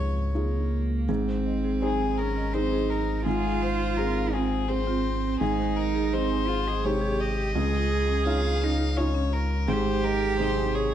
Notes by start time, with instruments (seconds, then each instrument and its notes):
Already playing: sub bass C#2, felt piano C#2 D#4 F4 G#4, cello F2, violin C#5
0.16 cello G#2
0.35 cello A#3, felt piano D#4 F4 G#4
1.09 sub bass G#1, felt piano G#2, cello C4, marimba G#4
1.28 marimba C5
1.46 marimba D#5
1.64 marimba G#4
1.82 felt piano D#4 G#4 C5, violin G#4, marimba C5
2.01 marimba G#5
2.18 cello C#4, marimba G#4, violin A#4
2.37 marimba D#5
2.54 felt piano C4 D#4 G#4, cello D#4, violin C5, marimba C5
2.72 marimba G#4
2.90 violin A#4
3.26 felt piano G#2, cello F4, marimba F4, violin G#4
3.44 marimba G#4
3.62 violin C5, marimba C5
3.80 marimba F4
3.97 felt piano C4 G#4, marimba G#4, violin A#4
4.15 marimba F5
4.33 cello C4, marimba F4, violin G#4
4.52 marimba C5
4.69 cello C4, felt piano C4 G#4, marimba G#4, violin C5
4.87 marimba F4
5.40 sub bass G#1, felt piano G#2, cello D#4, violin G#4, marimba G#4
5.59 marimba C5
5.76 violin A#4, marimba D#5
5.95 marimba G#4
6.13 felt piano C4 D#4 G#4, marimba C5, violin C5
6.30 marimba G#5
6.48 cello F4, marimba G#4
6.66 cello G#4, marimba D#5
6.84 felt piano C3 G#3 D#4, cello G4, marimba C5, violin C#5
7.01 marimba G#4
7.20 violin D#5
7.55 sub bass C#2, felt piano C#2, marimba C#4, cello G#4
7.73 marimba F4
7.90 marimba G#4
8.09 marimba C#4
8.26 felt piano C#4 D#4 F4, marimba F4, violin F5
8.44 marimba C#5
8.61 marimba C#4, cello D#4
8.79 marimba G#4
8.96 felt piano C#4 D#4 F4, marimba F4, violin C#5
9.15 marimba C#4
9.33 violin A#4
9.67 sub bass G#1, felt piano G#2, cello G4, marimba G#4, violin C5
9.85 marimba C5
10.03 violin A#4, marimba D#5
10.21 marimba G#4
10.38 felt piano C3 G#3 D#4, marimba C5, violin C5
10.56 marimba G#5
10.74 marimba G#4, cello G#4, violin C#5